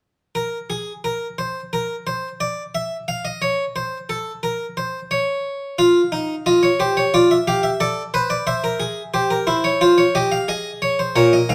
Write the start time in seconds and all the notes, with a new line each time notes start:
0.35 A#4
0.70 G#4
1.04 A#4
1.38 C5
1.73 A#4
2.07 C5
2.40 D5
2.75 E5
3.08 F5
3.25 D#5
3.42 C#5
3.76 C5
4.09 A4
4.43 A#4
4.77 C5
5.11 C#5
5.78 F4 F5
6.12 D#4
6.46 F4 D#5
6.63 C#5
6.80 G4 C5
6.97 C#5
7.14 F4 D5
7.31 E5
7.48 G4 F5
7.63 E5
7.80 A4 D5
8.14 B4 C5
8.30 D5
8.47 C5 E5
8.64 A#4
8.80 G#4
9.14 G4 C5
9.30 A#4
9.47 E4 C5
9.64 C#5
9.81 F4 C5
9.98 C#5
10.15 G4 D#5
10.32 F5
10.48 G#4 D#5
10.82 C#5
10.99 C5
11.16 A#2 A#4 C#5
11.33 D#5
11.49 G#2 F5